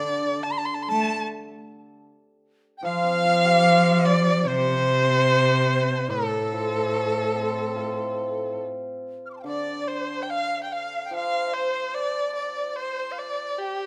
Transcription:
Already playing: D3 D5
0.43 A5
0.52 C6
0.58 A5
0.65 C6
0.74 A5
0.83 C6
0.88 A3 A5
2.78 G5
2.83 F3 F5
3.03 C4
3.24 F4
3.44 G4
3.64 C5
4.05 D5
4.46 C3 C5
5.70 C5
5.92 A5 C6
5.99 F5 G5
6.05 A2 D5
6.09 A4 C5
6.52 F3
6.92 A3
7.34 C4
7.76 F4
9.26 F6
9.30 C6 D6
9.37 G5 A5
9.43 D3 D5 F5
9.47 D5
9.88 C5
10.23 G5
10.29 F5
10.63 G5
10.72 F5
11.05 G5
11.11 F3 F5
11.15 F5
11.54 C5
11.94 D5
12.35 D5
12.76 C5
13.12 F5
13.19 D5
13.59 G4 G5

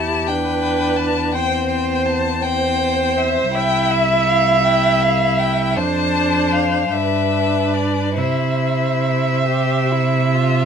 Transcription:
Already playing: E2 E4 G4 A5
0.27 D4 B4 G5
0.97 A5
1.32 C4 C5 G5
1.69 G5
2.06 A5
2.43 C4 C5 G5
3.18 E5
3.54 C2 E4 E5 G5
3.91 E5
4.28 F5
4.64 E4 G5
5.02 F5
5.39 G5
5.76 F2 D4 C5 A5
6.52 F5
6.92 G2 D4 B4 E5
7.74 D5
8.16 C3 E4 C5 E5
9.47 G4
9.91 E4
10.34 F4

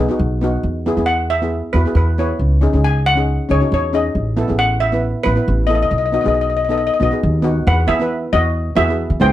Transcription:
0.09 B3 D#4 F#4
0.19 B1
0.41 B3 D#4 F#4
0.63 E2
0.86 B3 E4 G#4
0.97 E2 B3 E4 G#4
1.06 F#5
1.30 E5
1.42 B3 E4 G#4
1.73 E2 B3 E4 F#4 B4
1.86 B3 E4 G#4
1.95 E2 B4
2.18 B3 E4 B4 C#5
2.39 C#2
2.61 C#4 D#4 G#4
2.73 C#2 C#4 D#4 G#4
2.84 G#5
3.06 F#5
3.16 C#4 D#4 G#4
3.49 C#2 C#4 D#4 G#4 C#5
3.60 C#4 D#4 F#4
3.72 E2 C#5
3.93 C#4 D#4 G#4 D#5
4.15 A1
4.37 B3 E4 A4
4.48 A1 B3 E4 G#4
4.59 F#5
4.80 E5
4.92 B3 E4 B4
5.23 A1 B3 E4 B4
5.35 B3 E4 B4
5.48 A1
5.67 B3 E4 A4 D#5
5.75 D#5
5.83 D#5
5.91 B1 D#5
5.98 D#5
6.06 D#5
6.12 B3 D#4 F#4 D#5
6.21 B3 D#4 D#5
6.26 B1 G#4 D#5
6.34 D#5
6.41 D#5
6.50 D#5
6.57 D#5
6.65 D#5
6.69 B3 D#4 A4 D#5
6.78 D#5
6.87 D#5
6.94 D#5
7.00 B1 B3 D#4 F#4 D#5
7.11 B3 D#4 G#4
7.23 D#2
7.42 B3 D#4 F#4
7.67 E2 B4 F#5
7.87 B3 E4 G#4 E5
7.99 B3 E4 B4
8.33 E2 F#4 D#5
8.76 E2 B3 E4 F#4 G#4 E5
8.88 B3 E4 G#4
9.10 E3
9.20 C#2 B3 E4 G#4 C5 G5

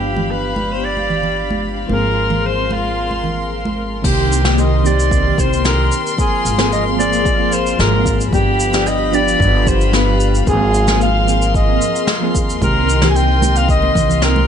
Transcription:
Already playing: G1 F3 B3 D4 G4 F5 B5
0.16 high conga, low conga
0.31 B4
0.56 high conga
0.72 C5
0.84 D5
0.97 high conga
1.10 low conga
1.23 low conga
1.50 high conga
1.86 G#1 F3 A#3 C6, high conga
1.90 C4 G#4 A#4
2.30 high conga, low conga
2.46 C5
2.71 F4, high conga
3.11 high conga
3.24 low conga
3.65 high conga
4.02 C2 D#3 A#3 C4 D#4 G4 A#4 C6, kick, crash, shaker
4.32 shaker
4.43 D#3 A#3 C4 G4, snare, shaker
4.58 D#5, shaker
4.83 D#3 A#3 C4 G4 D5, shaker
5.00 shaker
5.11 kick, shaker
5.23 D#3 A#3 C4 G4
5.38 C2 C5, kick, shaker
5.53 shaker
5.63 D#3 A#3 C4 G4 A#4, snare, shaker
5.92 shaker
6.07 shaker
6.17 F3 A#3 C4 G#4 F5, kick, shaker
6.45 G#1, shaker
6.57 F3 A#3 C4 G#4, snare, shaker
6.72 D#5, shaker
6.97 F3 A#3 C4 G#4 D5, shaker
7.13 shaker
7.26 kick, shaker
7.38 F3 A#3 C4 G#4
7.52 C5, shaker
7.67 shaker
7.77 G#1 F3 A#3 C4 G#4 A#4, snare, shaker
8.06 kick, shaker
8.21 shaker
8.31 G1 F3 B3 D4 G4 F5 B5, kick, shaker
8.60 shaker
8.71 F3 B3 D4 G4, snare, shaker
8.86 D#5, shaker
9.11 F3 B3 D4 G4 D5, shaker
9.28 shaker
9.40 G1, kick, shaker
9.52 F3 B3 D4 G4
9.67 C5, kick, shaker
9.81 shaker
9.91 F3 B3 D4 G4 B4, snare, shaker
10.20 shaker
10.35 shaker
10.45 G#1 F3 A#3 C4 G#4 A#4 C6, kick, shaker
10.74 shaker
10.86 F3 A#3 C4 G#4, snare, shaker
11.01 F5, shaker
11.26 F3 A#3 C4 G#4, shaker
11.42 shaker
11.54 D#5, kick, shaker
11.66 F3 A#3 C4 G#4
11.82 shaker
11.96 shaker
12.07 snare, shaker
12.20 F3 A#3 C4 G#4
12.35 D#2, kick, shaker
12.50 shaker
12.60 C2 D#3 A#3 C4 G4 A#4 D#5, kick, high conga, shaker
12.89 shaker
13.00 D#3 A#3 C4 G4, snare, high conga, low conga, shaker
13.10 G#5
13.16 G5, shaker
13.40 D#3 A#3 C4 G4, high conga, shaker
13.56 F5, shaker
13.69 D#5, kick, shaker
13.81 D#3 A#3 C4 G4, high conga
13.95 C2, kick, low conga, shaker
14.09 low conga, shaker
14.20 D#3 A#3 C4 G4 A#4, snare, shaker
14.36 high conga

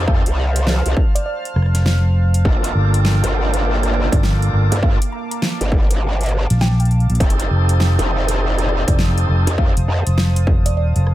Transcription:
Already playing: F2 C5 F5 A5
0.08 C4 D#4 G4 A4 F5 F6, kick
0.26 C2, closed hi-hat
0.56 closed hi-hat
0.67 snare
0.86 C2, closed hi-hat
0.97 kick
1.15 D5, closed hi-hat
1.26 D5
1.45 closed hi-hat
1.56 F1, cross-stick
1.62 cross-stick
1.66 cross-stick
1.75 cross-stick, snare, closed hi-hat
1.82 cross-stick, snare
2.34 closed hi-hat
2.45 G1 A#3 D4 F4 A4 G5 D6, kick
2.64 closed hi-hat
2.75 G1
2.94 closed hi-hat
3.05 snare
3.24 G1, closed hi-hat
3.54 closed hi-hat
3.83 cross-stick, closed hi-hat
3.94 D5, cross-stick
4.12 G1 D5, kick, closed hi-hat
4.23 snare
4.42 closed hi-hat
4.53 G1
4.72 G2, cross-stick, closed hi-hat
4.82 A#3 D4 F4 A4 F5 A5, kick
5.02 closed hi-hat
5.12 A#5
5.31 A#5, closed hi-hat
5.42 snare
5.61 G1, closed hi-hat
5.72 kick
5.91 closed hi-hat
6.21 closed hi-hat
6.23 closed hi-hat
6.26 closed hi-hat
6.31 cross-stick
6.50 A#1, snare, closed hi-hat
6.58 G5, snare
6.61 snare
6.71 snare
6.80 G5, closed hi-hat
6.85 closed hi-hat
6.91 closed hi-hat
7.00 closed hi-hat
7.10 A#1, closed hi-hat
7.15 closed hi-hat
7.20 F1 C4 D#4 G4 A4 C5 F5 D#6, kick, closed hi-hat
7.30 closed hi-hat
7.40 closed hi-hat
7.51 F1
7.69 closed hi-hat
7.80 snare
7.99 F1, closed hi-hat
8.28 closed hi-hat
8.59 cross-stick, closed hi-hat
8.69 D5, cross-stick
8.88 F1 D5, kick, closed hi-hat
8.99 snare
9.18 closed hi-hat
9.29 F1
9.47 F2, cross-stick, closed hi-hat
9.58 C4 D#4 G4 A4 F5, kick
9.77 F1, closed hi-hat
9.88 F2
10.07 F1, closed hi-hat
10.18 snare
10.36 closed hi-hat
10.47 kick
10.66 E1 D5, closed hi-hat
10.77 D5
10.96 F1, closed hi-hat
11.07 cross-stick

